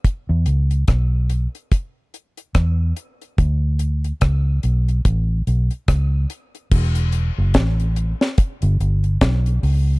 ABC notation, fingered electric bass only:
X:1
M:4/4
L:1/16
Q:"Swing 16ths" 1/4=72
K:Edor
V:1 name="Fingered electric bass" clef=bass
z E,, C,,2 B,,,3 z4 z E,,2 z2 | D,,4 C,,2 B,,,2 A,,,2 B,,, z C,,2 z2 | E,,,3 F,,, A,,,3 z2 G,,, G,,,2 B,,,2 C,,2 |]